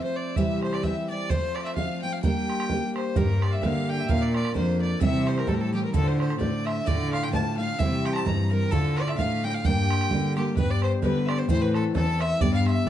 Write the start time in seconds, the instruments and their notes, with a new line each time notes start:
Already playing: steel-string acoustic guitar F3 A3 C4 F4, harp A4 D5 E5
0.02 fiddle C5, harp C5
0.16 fiddle D5, harp D5
0.36 steel-string acoustic guitar C3 E3 G3 C4 G4, fiddle E5, harp E5, bodhran
0.61 fiddle C5, harp C5, bodhran
0.72 fiddle D5, harp D5, bodhran
0.83 steel-string acoustic guitar E3 G3 C4 G4, fiddle E5, harp E5, bodhran
1.09 steel-string acoustic guitar E3 G3 C4 G4, fiddle D5, harp D5
1.30 steel-string acoustic guitar F3 A3 C4 F4, fiddle C5, harp C5, bodhran
1.55 fiddle D5, harp D5, bodhran
1.64 fiddle E5, harp E5, bodhran
1.75 steel-string acoustic guitar F3 A3 C4 F4, fiddle F5, harp F5, bodhran
2.02 steel-string acoustic guitar F3 A3 C4 F4, fiddle G5, harp G5
2.12 fiddle F5, harp F5
2.22 steel-string acoustic guitar G3 A#3 D4 G4, fiddle G5, harp G5, bodhran
2.50 bodhran
2.60 bodhran
2.70 steel-string acoustic guitar G3 A#3 D4 G4, bodhran
2.95 fiddle C5, harp C5, bodhran
3.16 cello G2, steel-string acoustic guitar G3 A#3 D4 G4, fiddle A#4, harp A#4, bodhran
3.42 fiddle D5, harp D5, bodhran
3.50 fiddle E5 F5, harp E5
3.62 cello D3, steel-string acoustic guitar G3 A#3 D4 G4, fiddle F5, harp F5, bodhran
3.89 fiddle G5, harp G5
3.99 fiddle E5, harp E5
4.08 cello A#2, steel-string acoustic guitar A#3 D4 F4 A#4, fiddle F5, harp F5, bodhran
4.21 fiddle D5, harp D5
4.35 fiddle D5, harp D5, bodhran
4.45 bodhran
4.54 cello F2, steel-string acoustic guitar A#3 D4 F4 A#4, fiddle C5, harp C5, bodhran
4.80 fiddle D5, harp D5
5.00 steel-string acoustic guitar C3 E3 G3 C4 G4, cello C3, fiddle E5, harp E5, bodhran
5.27 fiddle C5, harp C5, bodhran
5.37 fiddle A#4, harp A#4, bodhran
5.47 cello A2, steel-string acoustic guitar E3 G3 C4 G4, fiddle A4, harp A4, bodhran
5.54 fiddle A#4
5.60 fiddle A4, harp A4
5.72 steel-string acoustic guitar E3 G3 C4 G4, fiddle G4, harp G4
5.80 fiddle A#4 C5
5.84 fiddle A#4, harp A#4
5.92 steel-string acoustic guitar D2 A2 D3 A3 D4 F4, cello D3, fiddle A4, harp A4, bodhran
6.04 fiddle C5, harp C5
6.17 fiddle C5, harp C5, bodhran
6.30 bodhran
6.38 cello A2, steel-string acoustic guitar D3 A3 D4 F4, fiddle D5, harp D5, bodhran
6.65 fiddle E5, harp E5, bodhran
6.85 steel-string acoustic guitar D2 A2 D3 A3 D4 F4, cello D3, fiddle D5, harp D5, bodhran
7.11 fiddle F5, harp F5, bodhran
7.22 fiddle G5, harp G5, bodhran
7.33 cello A2, steel-string acoustic guitar D3 A3 D4 F4, fiddle A5, harp A5, bodhran
7.57 steel-string acoustic guitar D3 A3 D4 F4, fiddle F5, harp F5
7.79 steel-string acoustic guitar C3 E3 G3 C4 G4, cello C3, harp E5, fiddle E5, bodhran
8.05 harp G5, fiddle G5, bodhran
8.13 fiddle A5 A#5, bodhran
8.25 cello G2, steel-string acoustic guitar E3 G3 C4 G4, fiddle A#5, harp A#5, bodhran
8.51 steel-string acoustic guitar E3 G3 C4 G4, harp A#4, fiddle A#4
8.71 steel-string acoustic guitar D2 A2 D3 A3 D4 F4, cello D3, fiddle A4, harp A4, bodhran
8.97 fiddle D5, harp D5, bodhran
9.07 fiddle E5, harp E5, bodhran
9.18 cello A2, steel-string acoustic guitar D3 A3 D4 F4, harp F5, fiddle F5, bodhran
9.44 steel-string acoustic guitar D3 A3 D4 F4, fiddle G5, harp G5
9.54 fiddle F5, harp F5
9.64 cello G2, steel-string acoustic guitar G3 A#3 D4 G4, fiddle G5, harp G5, bodhran
9.90 bodhran
10.01 bodhran
10.10 cello D3, steel-string acoustic guitar G3 A#3 D4 G4, bodhran
10.36 steel-string acoustic guitar G3 A#3 D4 G4, fiddle G4, bodhran
10.57 cello G2, steel-string acoustic guitar G3 B3 D4 G4, harp B4, fiddle B4, bodhran
10.70 harp D5, fiddle D5
10.82 harp C5, fiddle C5, bodhran
11.02 cello D3, steel-string acoustic guitar G3 B3 D4 G4, fiddle B4, harp B4, bodhran
11.26 fiddle D5 E5, harp D5, bodhran
11.39 fiddle C5, harp C5
11.48 steel-string acoustic guitar A2 E3 A3 C4 E4, cello A2, fiddle C5, harp C5, bodhran
11.61 fiddle B4, harp B4
11.74 fiddle A4, harp A4, bodhran
11.94 cello E2, steel-string acoustic guitar E3 A3 C4 E4, fiddle A4, harp A4, bodhran
12.19 fiddle E5, harp E5, bodhran
12.41 cello G2, steel-string acoustic guitar G3 B3 D4 G4, fiddle D5, harp D5, bodhran
12.54 fiddle F5, harp F5
12.66 harp E5, fiddle E5, bodhran
12.86 harp D5